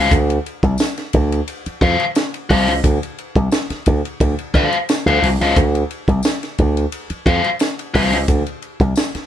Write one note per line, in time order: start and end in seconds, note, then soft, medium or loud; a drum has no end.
0.00 0.11 F#4 medium
0.00 0.11 C5 medium
0.00 0.11 F5 medium
0.11 0.38 D2 loud
0.11 kick loud
0.11 hi-hat pedal medium
0.11 ride medium
0.30 ride soft
0.46 ride medium
0.63 0.75 C2 loud
0.63 kick medium
0.63 ride soft
0.78 snare loud
0.78 ride medium
0.78 tambourine medium
0.97 snare soft
0.97 ride soft
1.13 1.40 D2 medium
1.13 kick medium
1.13 ride medium
1.32 ride soft
1.48 ride medium
1.66 muted slap bass stroke soft
1.66 ride soft
1.81 1.95 F2 medium
1.81 2.03 F#4 medium
1.81 2.03 C5 medium
1.81 2.03 F5 loud
1.81 kick loud
1.81 ride medium
2.00 ride soft
2.15 snare loud
2.15 ride medium
2.15 tambourine medium
2.34 ride medium
2.49 2.68 C2 medium
2.49 2.71 F#4 medium
2.49 2.71 C5 medium
2.49 2.72 F5 loud
2.49 kick medium
2.49 open hi-hat medium
2.49 ride medium
2.68 2.80 C#2 medium
2.68 snare soft
2.68 ride soft
2.84 2.98 D2 loud
2.84 kick loud
2.84 hi-hat pedal medium
2.84 ride medium
3.03 ride soft
3.18 ride soft
3.36 3.48 C2 medium
3.36 kick medium
3.36 ride soft
3.52 snare loud
3.52 ride medium
3.52 tambourine loud
3.70 muted slap bass stroke medium
3.70 snare soft
3.70 ride soft
3.86 4.00 D2 medium
3.86 kick medium
3.86 ride medium
4.05 ride medium
4.20 4.34 D2 medium
4.20 kick loud
4.20 ride medium
4.39 ride soft
4.54 4.68 D3 loud
4.54 4.75 F#4 medium
4.54 4.76 C5 medium
4.54 4.76 F5 loud
4.54 kick loud
4.54 ride medium
4.73 ride soft
4.89 snare loud
4.89 ride medium
4.89 tambourine medium
5.06 5.18 D2 medium
5.06 5.27 F#4 medium
5.06 5.26 C5 medium
5.06 5.26 F5 medium
5.06 ride soft
5.22 5.36 C2 loud
5.22 open hi-hat medium
5.22 ride medium
5.40 5.52 C#2 medium
5.40 5.56 F#4 medium
5.40 5.56 C5 medium
5.40 5.56 F5 medium
5.40 snare soft
5.40 ride soft
5.57 5.82 D2 loud
5.57 kick loud
5.57 hi-hat pedal medium
5.57 ride medium
5.75 ride soft
5.91 ride medium
6.08 6.20 C2 medium
6.08 kick medium
6.08 ride soft
6.23 snare loud
6.23 ride medium
6.23 tambourine loud
6.43 snare soft
6.43 ride soft
6.58 6.85 D2 medium
6.58 kick medium
6.58 ride medium
6.77 ride soft
6.92 ride medium
7.10 muted slap bass stroke soft
7.10 ride soft
7.26 7.40 F2 medium
7.26 7.47 F#4 medium
7.26 7.48 C5 medium
7.26 7.48 F5 loud
7.26 kick medium
7.26 ride medium
7.44 ride soft
7.59 snare loud
7.59 ride medium
7.59 tambourine medium
7.79 ride medium
7.94 8.13 C2 loud
7.94 8.15 F#4 medium
7.94 8.16 C5 loud
7.94 8.16 F5 medium
7.94 kick medium
7.94 open hi-hat medium
7.94 ride medium
8.13 8.25 C#2 medium
8.13 snare soft
8.13 ride soft
8.28 8.42 D2 loud
8.28 kick loud
8.28 hi-hat pedal medium
8.28 ride medium
8.47 ride soft
8.62 ride soft
8.80 8.92 C2 medium
8.80 kick medium
8.80 ride soft
8.96 snare loud
8.96 ride medium
8.96 tambourine loud
9.15 muted slap bass stroke soft
9.15 snare soft
9.15 ride soft